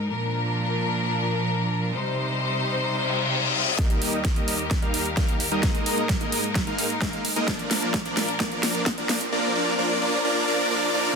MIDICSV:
0, 0, Header, 1, 6, 480
1, 0, Start_track
1, 0, Tempo, 461538
1, 98, Time_signature, 4, 2, 24, 8
1, 11601, End_track
2, 0, Start_track
2, 0, Title_t, "Supersaw synth"
2, 0, Program_c, 0, 81
2, 3936, Note_on_c, 0, 70, 70
2, 3937, Note_on_c, 0, 55, 74
2, 3937, Note_on_c, 0, 58, 70
2, 3937, Note_on_c, 0, 63, 72
2, 3937, Note_on_c, 0, 75, 82
2, 4148, Note_off_c, 0, 55, 0
2, 4148, Note_off_c, 0, 58, 0
2, 4148, Note_off_c, 0, 63, 0
2, 4148, Note_off_c, 0, 70, 0
2, 4148, Note_off_c, 0, 75, 0
2, 4176, Note_on_c, 0, 63, 76
2, 4177, Note_on_c, 0, 55, 85
2, 4177, Note_on_c, 0, 58, 73
2, 4177, Note_on_c, 0, 70, 72
2, 4177, Note_on_c, 0, 75, 94
2, 4361, Note_off_c, 0, 55, 0
2, 4361, Note_off_c, 0, 58, 0
2, 4361, Note_off_c, 0, 63, 0
2, 4361, Note_off_c, 0, 70, 0
2, 4361, Note_off_c, 0, 75, 0
2, 4537, Note_on_c, 0, 58, 73
2, 4537, Note_on_c, 0, 63, 72
2, 4537, Note_on_c, 0, 70, 70
2, 4538, Note_on_c, 0, 55, 78
2, 4538, Note_on_c, 0, 75, 85
2, 4721, Note_off_c, 0, 55, 0
2, 4721, Note_off_c, 0, 58, 0
2, 4721, Note_off_c, 0, 63, 0
2, 4721, Note_off_c, 0, 70, 0
2, 4721, Note_off_c, 0, 75, 0
2, 5017, Note_on_c, 0, 55, 81
2, 5017, Note_on_c, 0, 58, 78
2, 5017, Note_on_c, 0, 63, 75
2, 5017, Note_on_c, 0, 70, 75
2, 5017, Note_on_c, 0, 77, 92
2, 5201, Note_off_c, 0, 55, 0
2, 5201, Note_off_c, 0, 58, 0
2, 5201, Note_off_c, 0, 63, 0
2, 5201, Note_off_c, 0, 70, 0
2, 5201, Note_off_c, 0, 77, 0
2, 5378, Note_on_c, 0, 55, 85
2, 5378, Note_on_c, 0, 58, 80
2, 5378, Note_on_c, 0, 63, 76
2, 5378, Note_on_c, 0, 70, 74
2, 5378, Note_on_c, 0, 77, 91
2, 5561, Note_off_c, 0, 55, 0
2, 5561, Note_off_c, 0, 58, 0
2, 5561, Note_off_c, 0, 63, 0
2, 5561, Note_off_c, 0, 70, 0
2, 5561, Note_off_c, 0, 77, 0
2, 5737, Note_on_c, 0, 55, 98
2, 5737, Note_on_c, 0, 58, 90
2, 5737, Note_on_c, 0, 63, 89
2, 5737, Note_on_c, 0, 70, 93
2, 5737, Note_on_c, 0, 75, 114
2, 5828, Note_off_c, 0, 55, 0
2, 5828, Note_off_c, 0, 58, 0
2, 5828, Note_off_c, 0, 63, 0
2, 5829, Note_off_c, 0, 70, 0
2, 5829, Note_off_c, 0, 75, 0
2, 5856, Note_on_c, 0, 58, 71
2, 5856, Note_on_c, 0, 63, 74
2, 5856, Note_on_c, 0, 70, 70
2, 5856, Note_on_c, 0, 75, 84
2, 5857, Note_on_c, 0, 56, 82
2, 6068, Note_off_c, 0, 56, 0
2, 6068, Note_off_c, 0, 58, 0
2, 6068, Note_off_c, 0, 63, 0
2, 6068, Note_off_c, 0, 70, 0
2, 6068, Note_off_c, 0, 75, 0
2, 6096, Note_on_c, 0, 56, 83
2, 6096, Note_on_c, 0, 58, 76
2, 6096, Note_on_c, 0, 63, 77
2, 6096, Note_on_c, 0, 70, 75
2, 6096, Note_on_c, 0, 75, 92
2, 6280, Note_off_c, 0, 56, 0
2, 6280, Note_off_c, 0, 58, 0
2, 6280, Note_off_c, 0, 63, 0
2, 6280, Note_off_c, 0, 70, 0
2, 6280, Note_off_c, 0, 75, 0
2, 6456, Note_on_c, 0, 56, 78
2, 6456, Note_on_c, 0, 58, 73
2, 6456, Note_on_c, 0, 63, 73
2, 6456, Note_on_c, 0, 70, 68
2, 6456, Note_on_c, 0, 75, 85
2, 6640, Note_off_c, 0, 58, 0
2, 6640, Note_off_c, 0, 70, 0
2, 6641, Note_off_c, 0, 56, 0
2, 6641, Note_off_c, 0, 63, 0
2, 6641, Note_off_c, 0, 75, 0
2, 6936, Note_on_c, 0, 63, 77
2, 6937, Note_on_c, 0, 56, 85
2, 6937, Note_on_c, 0, 58, 79
2, 6937, Note_on_c, 0, 70, 77
2, 6937, Note_on_c, 0, 77, 95
2, 7121, Note_off_c, 0, 56, 0
2, 7121, Note_off_c, 0, 58, 0
2, 7121, Note_off_c, 0, 63, 0
2, 7121, Note_off_c, 0, 70, 0
2, 7121, Note_off_c, 0, 77, 0
2, 7296, Note_on_c, 0, 56, 88
2, 7296, Note_on_c, 0, 58, 78
2, 7296, Note_on_c, 0, 63, 73
2, 7296, Note_on_c, 0, 70, 78
2, 7296, Note_on_c, 0, 77, 91
2, 7480, Note_off_c, 0, 56, 0
2, 7480, Note_off_c, 0, 58, 0
2, 7481, Note_off_c, 0, 63, 0
2, 7481, Note_off_c, 0, 70, 0
2, 7481, Note_off_c, 0, 77, 0
2, 7656, Note_on_c, 0, 63, 93
2, 7657, Note_on_c, 0, 56, 100
2, 7657, Note_on_c, 0, 58, 89
2, 7657, Note_on_c, 0, 70, 93
2, 7657, Note_on_c, 0, 75, 111
2, 7748, Note_off_c, 0, 58, 0
2, 7748, Note_off_c, 0, 63, 0
2, 7748, Note_off_c, 0, 70, 0
2, 7748, Note_off_c, 0, 75, 0
2, 7749, Note_off_c, 0, 56, 0
2, 7776, Note_on_c, 0, 62, 67
2, 7776, Note_on_c, 0, 74, 82
2, 7777, Note_on_c, 0, 53, 73
2, 7777, Note_on_c, 0, 58, 65
2, 7777, Note_on_c, 0, 70, 64
2, 7988, Note_off_c, 0, 53, 0
2, 7988, Note_off_c, 0, 58, 0
2, 7988, Note_off_c, 0, 62, 0
2, 7988, Note_off_c, 0, 70, 0
2, 7988, Note_off_c, 0, 74, 0
2, 8017, Note_on_c, 0, 70, 72
2, 8018, Note_on_c, 0, 53, 78
2, 8018, Note_on_c, 0, 58, 71
2, 8018, Note_on_c, 0, 62, 71
2, 8018, Note_on_c, 0, 74, 86
2, 8201, Note_off_c, 0, 53, 0
2, 8201, Note_off_c, 0, 58, 0
2, 8201, Note_off_c, 0, 62, 0
2, 8201, Note_off_c, 0, 70, 0
2, 8201, Note_off_c, 0, 74, 0
2, 8377, Note_on_c, 0, 53, 72
2, 8377, Note_on_c, 0, 58, 67
2, 8377, Note_on_c, 0, 62, 69
2, 8377, Note_on_c, 0, 70, 65
2, 8377, Note_on_c, 0, 74, 81
2, 8561, Note_off_c, 0, 53, 0
2, 8561, Note_off_c, 0, 58, 0
2, 8561, Note_off_c, 0, 62, 0
2, 8561, Note_off_c, 0, 70, 0
2, 8561, Note_off_c, 0, 74, 0
2, 8737, Note_on_c, 0, 53, 81
2, 8737, Note_on_c, 0, 58, 73
2, 8737, Note_on_c, 0, 62, 72
2, 8737, Note_on_c, 0, 70, 72
2, 8738, Note_on_c, 0, 74, 87
2, 8948, Note_off_c, 0, 53, 0
2, 8948, Note_off_c, 0, 70, 0
2, 8949, Note_off_c, 0, 58, 0
2, 8949, Note_off_c, 0, 62, 0
2, 8949, Note_off_c, 0, 74, 0
2, 8978, Note_on_c, 0, 53, 82
2, 8978, Note_on_c, 0, 58, 72
2, 8978, Note_on_c, 0, 62, 76
2, 8978, Note_on_c, 0, 70, 78
2, 8978, Note_on_c, 0, 74, 92
2, 9161, Note_off_c, 0, 53, 0
2, 9161, Note_off_c, 0, 58, 0
2, 9161, Note_off_c, 0, 62, 0
2, 9161, Note_off_c, 0, 70, 0
2, 9161, Note_off_c, 0, 74, 0
2, 9338, Note_on_c, 0, 53, 77
2, 9338, Note_on_c, 0, 58, 72
2, 9338, Note_on_c, 0, 62, 68
2, 9338, Note_on_c, 0, 70, 71
2, 9338, Note_on_c, 0, 74, 88
2, 9521, Note_off_c, 0, 62, 0
2, 9521, Note_off_c, 0, 70, 0
2, 9521, Note_off_c, 0, 74, 0
2, 9522, Note_off_c, 0, 53, 0
2, 9522, Note_off_c, 0, 58, 0
2, 9697, Note_on_c, 0, 53, 79
2, 9697, Note_on_c, 0, 62, 72
2, 9698, Note_on_c, 0, 58, 75
2, 9698, Note_on_c, 0, 70, 72
2, 9698, Note_on_c, 0, 74, 87
2, 9909, Note_off_c, 0, 53, 0
2, 9909, Note_off_c, 0, 58, 0
2, 9909, Note_off_c, 0, 62, 0
2, 9909, Note_off_c, 0, 70, 0
2, 9909, Note_off_c, 0, 74, 0
2, 9937, Note_on_c, 0, 53, 83
2, 9937, Note_on_c, 0, 58, 73
2, 9937, Note_on_c, 0, 62, 74
2, 9937, Note_on_c, 0, 70, 74
2, 9937, Note_on_c, 0, 74, 92
2, 10121, Note_off_c, 0, 53, 0
2, 10121, Note_off_c, 0, 58, 0
2, 10121, Note_off_c, 0, 62, 0
2, 10121, Note_off_c, 0, 70, 0
2, 10121, Note_off_c, 0, 74, 0
2, 10177, Note_on_c, 0, 53, 85
2, 10177, Note_on_c, 0, 58, 76
2, 10177, Note_on_c, 0, 62, 75
2, 10177, Note_on_c, 0, 70, 76
2, 10177, Note_on_c, 0, 74, 93
2, 10388, Note_off_c, 0, 53, 0
2, 10388, Note_off_c, 0, 58, 0
2, 10388, Note_off_c, 0, 70, 0
2, 10388, Note_off_c, 0, 74, 0
2, 10389, Note_off_c, 0, 62, 0
2, 10417, Note_on_c, 0, 53, 88
2, 10417, Note_on_c, 0, 58, 81
2, 10417, Note_on_c, 0, 62, 78
2, 10417, Note_on_c, 0, 70, 76
2, 10417, Note_on_c, 0, 74, 91
2, 10601, Note_off_c, 0, 53, 0
2, 10601, Note_off_c, 0, 58, 0
2, 10601, Note_off_c, 0, 62, 0
2, 10601, Note_off_c, 0, 70, 0
2, 10601, Note_off_c, 0, 74, 0
2, 10657, Note_on_c, 0, 53, 83
2, 10657, Note_on_c, 0, 58, 74
2, 10657, Note_on_c, 0, 62, 76
2, 10657, Note_on_c, 0, 70, 74
2, 10657, Note_on_c, 0, 74, 89
2, 10868, Note_off_c, 0, 58, 0
2, 10868, Note_off_c, 0, 62, 0
2, 10868, Note_off_c, 0, 70, 0
2, 10868, Note_off_c, 0, 74, 0
2, 10869, Note_off_c, 0, 53, 0
2, 10897, Note_on_c, 0, 62, 81
2, 10898, Note_on_c, 0, 53, 84
2, 10898, Note_on_c, 0, 58, 81
2, 10898, Note_on_c, 0, 70, 81
2, 10898, Note_on_c, 0, 74, 93
2, 11109, Note_off_c, 0, 53, 0
2, 11109, Note_off_c, 0, 58, 0
2, 11109, Note_off_c, 0, 62, 0
2, 11109, Note_off_c, 0, 70, 0
2, 11109, Note_off_c, 0, 74, 0
2, 11137, Note_on_c, 0, 74, 98
2, 11138, Note_on_c, 0, 53, 90
2, 11138, Note_on_c, 0, 58, 76
2, 11138, Note_on_c, 0, 62, 78
2, 11138, Note_on_c, 0, 70, 78
2, 11349, Note_off_c, 0, 53, 0
2, 11349, Note_off_c, 0, 58, 0
2, 11349, Note_off_c, 0, 62, 0
2, 11349, Note_off_c, 0, 70, 0
2, 11349, Note_off_c, 0, 74, 0
2, 11377, Note_on_c, 0, 58, 75
2, 11377, Note_on_c, 0, 70, 80
2, 11378, Note_on_c, 0, 53, 86
2, 11378, Note_on_c, 0, 62, 80
2, 11378, Note_on_c, 0, 74, 97
2, 11588, Note_off_c, 0, 70, 0
2, 11589, Note_off_c, 0, 53, 0
2, 11589, Note_off_c, 0, 58, 0
2, 11589, Note_off_c, 0, 62, 0
2, 11589, Note_off_c, 0, 74, 0
2, 11601, End_track
3, 0, Start_track
3, 0, Title_t, "String section"
3, 0, Program_c, 1, 48
3, 98, Note_on_c, 1, 46, 73
3, 98, Note_on_c, 1, 53, 63
3, 98, Note_on_c, 1, 62, 66
3, 98, Note_on_c, 1, 70, 78
3, 1998, Note_off_c, 1, 46, 0
3, 1998, Note_off_c, 1, 53, 0
3, 1999, Note_off_c, 1, 62, 0
3, 1999, Note_off_c, 1, 70, 0
3, 2016, Note_on_c, 1, 48, 73
3, 2016, Note_on_c, 1, 72, 79
3, 2017, Note_on_c, 1, 55, 63
3, 2017, Note_on_c, 1, 63, 67
3, 3918, Note_off_c, 1, 48, 0
3, 3918, Note_off_c, 1, 55, 0
3, 3918, Note_off_c, 1, 63, 0
3, 3918, Note_off_c, 1, 72, 0
3, 3937, Note_on_c, 1, 51, 68
3, 3937, Note_on_c, 1, 67, 65
3, 3938, Note_on_c, 1, 39, 71
3, 3938, Note_on_c, 1, 70, 82
3, 5838, Note_off_c, 1, 39, 0
3, 5838, Note_off_c, 1, 51, 0
3, 5838, Note_off_c, 1, 67, 0
3, 5857, Note_on_c, 1, 44, 74
3, 5857, Note_on_c, 1, 56, 67
3, 5857, Note_on_c, 1, 63, 69
3, 7739, Note_off_c, 1, 70, 0
3, 7758, Note_off_c, 1, 44, 0
3, 7758, Note_off_c, 1, 56, 0
3, 7758, Note_off_c, 1, 63, 0
3, 7777, Note_on_c, 1, 46, 76
3, 7777, Note_on_c, 1, 53, 70
3, 7777, Note_on_c, 1, 62, 71
3, 7777, Note_on_c, 1, 70, 80
3, 9678, Note_off_c, 1, 46, 0
3, 9678, Note_off_c, 1, 53, 0
3, 9678, Note_off_c, 1, 62, 0
3, 9678, Note_off_c, 1, 70, 0
3, 11601, End_track
4, 0, Start_track
4, 0, Title_t, "Reverse cymbal"
4, 0, Program_c, 2, 119
4, 2978, Note_on_c, 2, 60, 74
4, 3937, Note_off_c, 2, 60, 0
4, 11601, End_track
5, 0, Start_track
5, 0, Title_t, "Riser"
5, 0, Program_c, 3, 103
5, 3937, Note_on_c, 3, 60, 72
5, 11601, Note_off_c, 3, 60, 0
5, 11601, End_track
6, 0, Start_track
6, 0, Title_t, "Drums"
6, 3937, Note_on_c, 9, 36, 117
6, 3937, Note_on_c, 9, 38, 46
6, 3937, Note_on_c, 9, 42, 93
6, 4041, Note_off_c, 9, 36, 0
6, 4041, Note_off_c, 9, 38, 0
6, 4041, Note_off_c, 9, 42, 0
6, 4057, Note_on_c, 9, 42, 40
6, 4161, Note_off_c, 9, 42, 0
6, 4177, Note_on_c, 9, 46, 106
6, 4281, Note_off_c, 9, 46, 0
6, 4297, Note_on_c, 9, 42, 40
6, 4401, Note_off_c, 9, 42, 0
6, 4417, Note_on_c, 9, 36, 107
6, 4417, Note_on_c, 9, 38, 47
6, 4417, Note_on_c, 9, 42, 92
6, 4521, Note_off_c, 9, 36, 0
6, 4521, Note_off_c, 9, 38, 0
6, 4521, Note_off_c, 9, 42, 0
6, 4537, Note_on_c, 9, 42, 40
6, 4641, Note_off_c, 9, 42, 0
6, 4657, Note_on_c, 9, 46, 91
6, 4761, Note_off_c, 9, 46, 0
6, 4777, Note_on_c, 9, 42, 42
6, 4881, Note_off_c, 9, 42, 0
6, 4897, Note_on_c, 9, 36, 110
6, 4897, Note_on_c, 9, 38, 50
6, 4897, Note_on_c, 9, 42, 96
6, 5001, Note_off_c, 9, 36, 0
6, 5001, Note_off_c, 9, 38, 0
6, 5001, Note_off_c, 9, 42, 0
6, 5017, Note_on_c, 9, 42, 39
6, 5121, Note_off_c, 9, 42, 0
6, 5137, Note_on_c, 9, 46, 98
6, 5241, Note_off_c, 9, 46, 0
6, 5257, Note_on_c, 9, 42, 41
6, 5361, Note_off_c, 9, 42, 0
6, 5377, Note_on_c, 9, 36, 117
6, 5377, Note_on_c, 9, 38, 53
6, 5377, Note_on_c, 9, 42, 87
6, 5481, Note_off_c, 9, 36, 0
6, 5481, Note_off_c, 9, 38, 0
6, 5481, Note_off_c, 9, 42, 0
6, 5497, Note_on_c, 9, 42, 41
6, 5601, Note_off_c, 9, 42, 0
6, 5616, Note_on_c, 9, 46, 90
6, 5720, Note_off_c, 9, 46, 0
6, 5736, Note_on_c, 9, 42, 40
6, 5840, Note_off_c, 9, 42, 0
6, 5856, Note_on_c, 9, 38, 57
6, 5856, Note_on_c, 9, 42, 91
6, 5857, Note_on_c, 9, 36, 116
6, 5960, Note_off_c, 9, 38, 0
6, 5960, Note_off_c, 9, 42, 0
6, 5961, Note_off_c, 9, 36, 0
6, 5976, Note_on_c, 9, 42, 39
6, 6080, Note_off_c, 9, 42, 0
6, 6096, Note_on_c, 9, 46, 105
6, 6200, Note_off_c, 9, 46, 0
6, 6217, Note_on_c, 9, 42, 37
6, 6321, Note_off_c, 9, 42, 0
6, 6337, Note_on_c, 9, 36, 118
6, 6337, Note_on_c, 9, 38, 61
6, 6337, Note_on_c, 9, 42, 85
6, 6441, Note_off_c, 9, 36, 0
6, 6441, Note_off_c, 9, 38, 0
6, 6441, Note_off_c, 9, 42, 0
6, 6457, Note_on_c, 9, 42, 40
6, 6561, Note_off_c, 9, 42, 0
6, 6576, Note_on_c, 9, 46, 91
6, 6680, Note_off_c, 9, 46, 0
6, 6697, Note_on_c, 9, 42, 39
6, 6801, Note_off_c, 9, 42, 0
6, 6817, Note_on_c, 9, 36, 122
6, 6817, Note_on_c, 9, 38, 64
6, 6817, Note_on_c, 9, 42, 91
6, 6921, Note_off_c, 9, 36, 0
6, 6921, Note_off_c, 9, 38, 0
6, 6921, Note_off_c, 9, 42, 0
6, 6937, Note_on_c, 9, 42, 38
6, 7041, Note_off_c, 9, 42, 0
6, 7057, Note_on_c, 9, 46, 111
6, 7161, Note_off_c, 9, 46, 0
6, 7177, Note_on_c, 9, 42, 41
6, 7281, Note_off_c, 9, 42, 0
6, 7297, Note_on_c, 9, 36, 121
6, 7297, Note_on_c, 9, 38, 66
6, 7297, Note_on_c, 9, 42, 83
6, 7401, Note_off_c, 9, 36, 0
6, 7401, Note_off_c, 9, 38, 0
6, 7401, Note_off_c, 9, 42, 0
6, 7417, Note_on_c, 9, 42, 40
6, 7521, Note_off_c, 9, 42, 0
6, 7537, Note_on_c, 9, 46, 99
6, 7641, Note_off_c, 9, 46, 0
6, 7657, Note_on_c, 9, 42, 39
6, 7761, Note_off_c, 9, 42, 0
6, 7777, Note_on_c, 9, 36, 125
6, 7777, Note_on_c, 9, 38, 71
6, 7777, Note_on_c, 9, 42, 93
6, 7881, Note_off_c, 9, 36, 0
6, 7881, Note_off_c, 9, 38, 0
6, 7881, Note_off_c, 9, 42, 0
6, 7897, Note_on_c, 9, 42, 39
6, 8001, Note_off_c, 9, 42, 0
6, 8017, Note_on_c, 9, 38, 77
6, 8017, Note_on_c, 9, 46, 112
6, 8121, Note_off_c, 9, 38, 0
6, 8121, Note_off_c, 9, 46, 0
6, 8138, Note_on_c, 9, 42, 36
6, 8242, Note_off_c, 9, 42, 0
6, 8257, Note_on_c, 9, 36, 125
6, 8257, Note_on_c, 9, 38, 73
6, 8257, Note_on_c, 9, 42, 86
6, 8361, Note_off_c, 9, 36, 0
6, 8361, Note_off_c, 9, 38, 0
6, 8361, Note_off_c, 9, 42, 0
6, 8377, Note_on_c, 9, 42, 38
6, 8481, Note_off_c, 9, 42, 0
6, 8496, Note_on_c, 9, 38, 80
6, 8496, Note_on_c, 9, 46, 98
6, 8600, Note_off_c, 9, 38, 0
6, 8600, Note_off_c, 9, 46, 0
6, 8617, Note_on_c, 9, 42, 40
6, 8721, Note_off_c, 9, 42, 0
6, 8737, Note_on_c, 9, 36, 118
6, 8737, Note_on_c, 9, 38, 82
6, 8737, Note_on_c, 9, 42, 87
6, 8841, Note_off_c, 9, 36, 0
6, 8841, Note_off_c, 9, 38, 0
6, 8841, Note_off_c, 9, 42, 0
6, 8857, Note_on_c, 9, 42, 38
6, 8961, Note_off_c, 9, 42, 0
6, 8976, Note_on_c, 9, 38, 82
6, 8976, Note_on_c, 9, 46, 116
6, 9080, Note_off_c, 9, 38, 0
6, 9080, Note_off_c, 9, 46, 0
6, 9097, Note_on_c, 9, 42, 39
6, 9201, Note_off_c, 9, 42, 0
6, 9216, Note_on_c, 9, 38, 81
6, 9216, Note_on_c, 9, 42, 85
6, 9217, Note_on_c, 9, 36, 127
6, 9320, Note_off_c, 9, 38, 0
6, 9320, Note_off_c, 9, 42, 0
6, 9321, Note_off_c, 9, 36, 0
6, 9337, Note_on_c, 9, 42, 38
6, 9441, Note_off_c, 9, 42, 0
6, 9457, Note_on_c, 9, 38, 89
6, 9457, Note_on_c, 9, 46, 97
6, 9561, Note_off_c, 9, 38, 0
6, 9561, Note_off_c, 9, 46, 0
6, 9577, Note_on_c, 9, 42, 40
6, 9681, Note_off_c, 9, 42, 0
6, 11601, End_track
0, 0, End_of_file